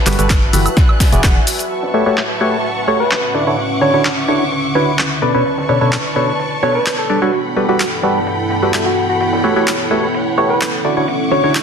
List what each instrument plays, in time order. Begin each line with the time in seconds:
Already playing: ambient pad F#4 B4 E5 A5, violin section B4 A5 F#6
0.06 fm bass G1, synth stab G3 F#4 G4 A4 B4, clap, closed hi-hat, open hi-hat, shaker
0.13 closed hi-hat
0.19 fm bass G1, synth stab G3 F#4 G4 A4 B4, closed hi-hat, shaker
0.30 kick, snare, clap, closed hi-hat, shaker
0.42 closed hi-hat
0.53 fm bass G1, synth stab E3 F#4 G4 A4 B4, closed hi-hat, open hi-hat, shaker
0.66 closed hi-hat, high woodblock, shaker
0.77 violin section D5 G#5, kick, snare, closed hi-hat, shaker
0.89 high woodblock
1.00 kick, snare, closed hi-hat, open hi-hat, shaker
1.12 fm bass E1, synth stab E3 E4 F#4 G#4 D5, closed hi-hat, shaker
1.24 fm bass E1, synth stab F#4 F#5, kick, snare, clap, closed hi-hat, shaker
1.47 closed hi-hat, open hi-hat, shaker
1.59 closed hi-hat, shaker
1.70 ambient pad A2, violin section B4 E5 F#5 A5 C#6, closed hi-hat
1.83 snare
1.92 synth stab A3 F#4 G4 A4 B4 C#5, ambient pad C#4, closed hi-hat
2.06 synth stab A3 F#4 G4 A4 B4 C#5
2.17 clap
2.41 synth stab A3 F#4 G4 A4 B4 C#5, closed hi-hat
2.64 closed hi-hat
2.88 synth stab A3 F#4 G4 A4 B4 C#5, soft synth lead C#5, closed hi-hat
3.00 soft synth lead B4
3.11 clap
3.35 ambient pad D3, synth stab D3 D4 E4 F#4 D5, violin section E5 C#6 D6, closed hi-hat
3.47 synth stab D3 D4 E4 F#4 C#5
3.58 closed hi-hat
3.81 synth stab D3 D4 E4 F#4 C#5, soft synth lead C#5, closed hi-hat
3.94 synth stab D3 D4 E4 F#4 C#5
4.05 clap, closed hi-hat
4.17 closed hi-hat
4.28 synth stab D3 D4 E4 F#4 C#5, closed hi-hat
4.52 closed hi-hat
4.75 synth stab D3 D4 E4 F#4 C#5, soft synth lead B4, closed hi-hat
4.88 closed hi-hat
4.99 clap, closed hi-hat
5.22 synth stab B2 D4 A4 B4 D5, ambient pad B3, violin section B4 D5 A5 C#6, soft synth lead B4, closed hi-hat
5.34 synth stab B2 D4 A4 B4 C#5, soft synth lead B4
5.43 ambient pad A4, closed hi-hat
5.58 snare
5.64 ambient pad E4
5.69 synth stab B2 D4 A4 B4 C#5, closed hi-hat
5.81 synth stab B2 D4 A4 B4 C#5
5.92 clap
6.15 synth stab B2 D4 A4 B4 C#5, ambient pad D5, closed hi-hat
6.39 closed hi-hat
6.63 synth stab B2 D4 A4 B4 C#5, soft synth lead C#5, snare, closed hi-hat
6.75 soft synth lead B4
6.86 clap
6.99 soft synth lead A4
7.10 synth stab G3 D4 A4 B4 D5, closed hi-hat
7.22 synth stab G3 D4 A4 B4 C#5, soft synth lead F#4
7.33 ambient pad G2, violin section A4 F#5 G5 B5, closed hi-hat
7.56 synth stab G3 F#4 G4 A4 B4, closed hi-hat
7.69 synth stab G3 F#4 G4 A4 B4, soft synth lead F#4
7.80 soft synth lead F#4, clap
7.92 closed hi-hat
8.03 synth stab G3 F#4 G4 A4 B4, closed hi-hat
8.27 closed hi-hat
8.50 closed hi-hat
8.63 synth stab G3 F#4 G4 A4 B4, closed hi-hat
8.74 synth stab F#4 G4 A4 E5, clap, closed hi-hat
8.86 soft synth lead F#4
8.97 closed hi-hat
9.09 soft synth lead F#4
9.21 soft synth lead F#4, violin section C#5, closed hi-hat
9.33 snare
9.44 synth stab A3 F#4 G4 A4 B4 C#5, closed hi-hat
9.56 synth stab A3 F#4 G4 A4 B4 C#5
9.67 ambient pad C#4, clap
9.91 synth stab A3 F#4 G4 A4 B4 C#5, closed hi-hat
10.14 closed hi-hat
10.38 synth stab A3 F#4 G4 A4 B4 C#5, soft synth lead C#5, closed hi-hat
10.50 soft synth lead B4
10.61 clap, closed hi-hat
10.85 ambient pad D3, synth stab D3 D4 E4 F#4 D5, violin section E5 C#6 D6, closed hi-hat
10.97 synth stab D3 D4 E4 F#4 C#5
11.08 closed hi-hat
11.31 synth stab D3 D4 E4 F#4 C#5, soft synth lead C#5, closed hi-hat
11.44 synth stab D3 D4 E4 F#4 C#5
11.55 clap